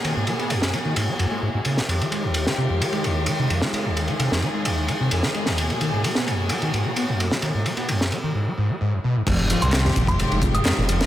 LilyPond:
<<
  \new Staff \with { instrumentName = "Synth bell" } { \time 4/4 \key f \minor \tempo 4 = 130 r1 | r1 | r1 | r1 |
r1 | r8. c'''16 r8. c'''16 r8. ees'''16 r4 | }
  \new Staff \with { instrumentName = "String section" } { \time 4/4 \key f \minor << { aes'1 | g'1 | aes'1~ | aes'1~ |
aes'2 r2 | g'1 | } \\ { <ces bes ges'>1 | <ees aes f'>1~ | <ees aes f'>1 | <ces bes ges'>1~ |
<ces bes ges'>2 r2 | <ees aes f'>1 | } >> }
  \new Staff \with { instrumentName = "Acid bass" } { \clef bass \time 4/4 \key f \minor ees16 aes,16 aes16 ces'16 ges,8 aes16 ees16 aes,16 aes16 ges,16 aes16 aes,16 aes,16 des16 aes,16 | f,16 f16 aes16 ees,8 f16 c16 f,16 f16 aes16 ees,8 f16 c16 f,16 f16 | aes16 ees,8 f16 c16 f,16 f16 aes16 ees,8 f16 c16 f,16 f16 aes16 ees,16~ | ees,16 aes16 ees16 aes,16 aes16 ces'16 ges,8 aes16 ees16 aes,16 aes16 ces'16 ges,8 aes16 |
ees16 aes,16 aes16 ces'16 ges,8 aes16 ees16 aes,16 aes16 aes,16 aes16 aes,16 ges,16 ces16 aes,16 | f,16 r16 f16 f,16 r16 f,16 bes,16 f,16 r16 f16 f,16 r16 f,16 bes,16 f,16 r16 | }
  \new Staff \with { instrumentName = "Detuned saw bass" } { \clef bass \time 4/4 \key f \minor r1 | r1 | r1 | r1 |
r1 | f,,8 r16 c,8 r16 f,,8 r16 f,,8 r8 f,,8 r16 | }
  \new DrumStaff \with { instrumentName = "Drums" } \drummode { \time 4/4 cymr8 cymr16 cymr16 cymr16 sn16 cymr8 cymr8 cymr8 r8 cymr16 sn16 | cymr16 cymr16 cymr8 cymr16 sn8. cymr16 cymr16 cymr8 cymr8 cymr16 sn16 | cymr8 cymr16 cymr16 cymr16 sn16 cymr8 cymr8 cymr8 cymr16 sn16 cymr16 sn16 | cymr16 cymr16 cymr8 cymr16 sn16 cymr8 cymr16 cymr16 cymr8 cymr8 cymr16 sn16 |
cymr8 cymr16 cymr16 cymr16 sn16 cymr8 r4 r4 | <cymc hh bd cymr>16 cymr16 <hh cymr>16 hh16 <hc hh cymr sn>16 sn16 <hh bd cymr>16 <hh bd>16 <hh cymr>16 cymr16 <hh bd cymr>16 hh16 <hc hh cymr sn>8 <hh cymr>16 <hh sn>16 | }
>>